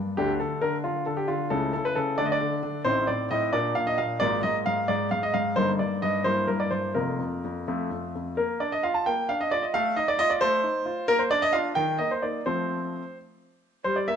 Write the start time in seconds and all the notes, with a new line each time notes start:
Already playing: G2 A#3 D4
0.17 D2 D3 A3 D4 G4
0.40 D3 A4
0.61 D3 A#4
0.84 D3 F4
1.06 D3 A4
1.17 G4
1.28 D3 F4
1.50 C#2 C#3 A3 E4 A4
1.73 C#3 A4
1.85 B4
1.95 C#3 A4
2.18 D3 A3 D4 D5
2.25 D#5
2.32 D5
2.41 D3
2.63 D3
2.85 A1 A2 C4 D#4 C5
3.07 A2 D5
3.31 A2 D#5
3.53 A#2 A#3 D4 D5
3.75 A#2 F5
3.87 D#5
3.98 A#2 F5
4.20 G#1 G#2 A#3 F4 D5
4.43 G#2 D#5
4.66 G#2 F5
4.88 G#2 D5
5.11 G#2 F5
5.23 D#5
5.34 G#2 F5
5.56 G1 G2 A#3 D#4 C5
5.79 G2 D5
6.02 G2 D#5
6.24 G2 A#3 E4 C5
6.47 G2 A#4
6.60 D5
6.71 G2 C5
6.94 F1 F2 A#3 F4 A#4
7.19 F2
7.44 F2
7.68 F2 A3 F4
7.91 F2
8.15 F2
8.37 A#3 A#4
8.60 D4 D5
8.72 D#5
8.83 F4 F5
8.94 A5
9.06 A#3 G5
9.29 D4 F5
9.41 D#5
9.51 F4 D5
9.62 D#5
9.74 A3 F5
9.96 D#4 D#5
10.08 D5
10.19 F4 D#5
10.30 D5
10.41 A3 C5
10.64 D#4
10.86 F4
11.08 A#3 A#4
11.19 C5
11.31 D4 D5
11.42 D#5
11.53 D4 F4 F5
11.75 D#3 G5
11.98 A#3 D#5
12.11 C5
12.22 A#3 D#4 D5
12.46 F3 A3 C4 C5
13.84 G3 C5
13.96 D5
14.08 A#3 E5